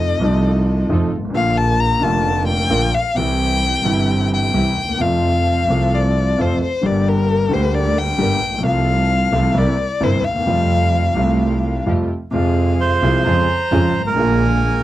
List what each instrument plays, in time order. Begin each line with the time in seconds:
Already playing: double bass F2, grand piano F2 C3 F3 A3 D#4, string section D#4 F4 A4, violin D#5
0.20 double bass C2, grand piano C2 C3 F3 A3, string section D#4 F4 A4
0.24 grand piano D#4
0.89 double bass F2, grand piano F2 C3 F3 A3 D#4, string section D#4 F4 A4
1.13 double bass G#1
1.18 grand piano G1
1.24 grand piano G#1
1.30 grand piano A1 D3
1.34 grand piano A#1 A#2 F3 A#3 F4, double bass A#1, string section D4 F4 A#4, violin F5
1.58 violin A5
1.80 violin A#5
2.00 grand piano F1 F2 D3 F3 A#3, double bass F1, string section D4 F4 A#4, violin A5
2.04 grand piano F4
2.48 violin G5
2.69 grand piano A#1 A#2 D3 F3 A#3 F4, double bass A#1, string section D4 F4 A#4
2.95 violin F5
3.15 double bass C2, grand piano C2 C3 E3 G3, string section C4 E4 G4, violin G5
3.19 grand piano E4
3.83 grand piano G1 G2 C3 E3 G3, double bass G1, string section C4 E4 G4
3.87 grand piano E4
4.34 violin G5
4.53 double bass C2, grand piano C2 C3 E3 G3 E4, string section C4 E4 G4
4.78 double bass D#2
4.84 grand piano D2
4.89 grand piano D#2
4.94 grand piano E2
4.98 grand piano F2 C3 F3 A3 F4, double bass F2, string section C4 F4 A4, violin F5
5.69 double bass C2, grand piano C2 C3 F3 A3 F4, string section C4 F4 A4
5.95 violin D5
6.38 grand piano F2 C3 F3 A3 F4, double bass F2, string section C4 F4 A4, violin C5
6.64 violin C5
6.81 double bass G1, grand piano G1 G2 D3 G3 A#3, string section D4 G4 A#4
6.86 grand piano G4, violin D5
7.09 violin A#4
7.49 grand piano D2 D3 G3 A#3, double bass D2, string section D4 G4 A#4
7.53 grand piano G4, violin C5
7.75 violin D5
7.99 violin G5
8.18 grand piano G1 G2 D3 G3 A#3 G4, double bass G1, string section D4 G4 A#4
8.43 double bass A#1
8.48 grand piano A1
8.54 grand piano A#1
8.59 grand piano B1 C3
8.63 grand piano C2 F3 A3 F4, double bass C2, string section C4 F4 A4, violin F5
9.32 grand piano C2 C3 F3 A3 F4, double bass C2, string section C4 F4 A4
9.54 grand piano C2 C3 G3 A#3 E4, double bass C2, string section C4 E4 A#4
9.59 violin D5
10.01 grand piano G1 G2 C3 G3 A#3 E4, double bass G1, string section C4 E4 A#4, violin C5
10.24 double bass D#2, violin F5
10.31 grand piano D2
10.36 grand piano D#2
10.40 grand piano E2
10.45 grand piano F2 C3 F3 G3 A3, double bass F2, string section A3 F4 G4
10.50 grand piano F4
11.15 double bass C2, grand piano C2 C3 G3 A3 F4, string section A3 F4 G4
11.86 double bass F2, grand piano F2 C3 F3 G3 A3 F4, string section A3 F4 G4
12.31 grand piano F2 C3 F3 G#3, double bass F2, string section C4 F4 G#4, violin F5
12.36 grand piano F4
12.81 bandoneon C5
13.02 double bass C2, grand piano C2 C3 F3 G#3 F4, string section C4 F4 G#4
13.25 double bass F2, grand piano F2 C#3 F3 G#3 F4, string section C#4 F4 G#4, violin A#5
13.71 double bass F2, grand piano F2 C#3 F3 G#3 F4, string section C#4 F4 G#4
13.94 double bass G#1
14.00 grand piano G1
14.07 grand piano G#1, bandoneon A#4
14.12 grand piano A1 D3
14.17 double bass A#1, grand piano A#1 A#2 G#3 A#3 F4, string section A#3 D4 G#4, violin G#5